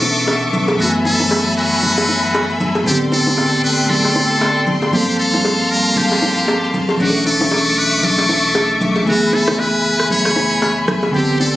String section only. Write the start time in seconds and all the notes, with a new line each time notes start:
Already playing: B3 A4 E5 C#6 D6
0.79 F#3 G#5 B5
2.86 A3 A4 D5 G5 C6
4.93 G3 A#3 F5 A5
7.00 A3 E5 C#6 D6
9.07 G#5 B5
11.14 A4 D5 G5 C6